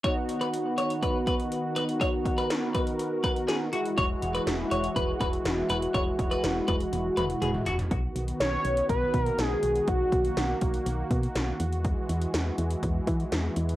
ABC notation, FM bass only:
X:1
M:4/4
L:1/8
Q:1/4=122
K:B
V:1 name="FM bass" clef=bass
z8 | z8 | E,,, E,,, E,,, E,,, E,,, E,,, E,,, E,,, | E,,, E,,, E,,, E,,, E,,, E,,, E,,, E,,, |
B,,, B,,, B,,, B,,, B,,, B,, B,,, B,,, | B,,, B,,, B,,, B,,, B,,, B,, B,,, E,,- | E,, E,, E,, E,, E,, E, E,, E,, |]